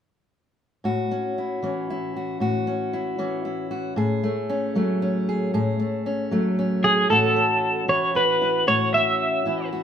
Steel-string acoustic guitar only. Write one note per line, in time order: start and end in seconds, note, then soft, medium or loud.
0.84 2.40 A2 medium
0.84 2.16 F#4 medium
1.11 1.63 C#4 soft
1.38 1.89 E4 soft
1.63 3.17 E3 soft
1.63 2.67 C#4 soft
1.90 2.38 E4 soft
2.16 2.41 F#4 soft
2.40 3.96 A2 medium
2.40 3.70 F#4 medium
2.67 3.18 C#4 soft
2.93 3.44 E4 soft
3.18 3.97 E3 soft
3.18 4.23 C#4 soft
3.45 3.94 E4 soft
3.71 3.97 F#4 soft
3.96 5.53 A2 medium
3.96 5.28 G#4 medium
4.24 4.76 A3 soft
4.49 5.02 C#4 soft
4.75 5.57 F#3 soft
4.75 5.78 A3 soft
5.02 6.05 C#4 soft
5.29 5.51 G#4 soft
5.54 7.08 A2 medium
5.54 6.84 G#4 medium
5.80 6.31 A3 soft
6.06 6.58 C#4 soft
6.31 7.07 F#3 soft
6.31 7.11 A3 soft
6.59 7.10 C#4 soft
6.85 7.08 G#4 soft
7.10 8.66 A2 medium
7.10 7.88 E3 soft
7.10 7.36 C#4 soft
7.10 7.89 E4 soft
7.10 8.15 F#4 medium
7.36 8.95 C#4 soft
7.88 9.44 E3 soft
7.88 8.40 E4 soft
8.15 8.67 F#4 soft
8.42 8.64 E4 soft
8.67 9.83 A2 medium
8.67 9.72 F#4 medium
8.95 9.83 C#4 soft
9.45 9.83 E3 soft
9.45 9.83 E4 soft
9.73 9.83 F#4 soft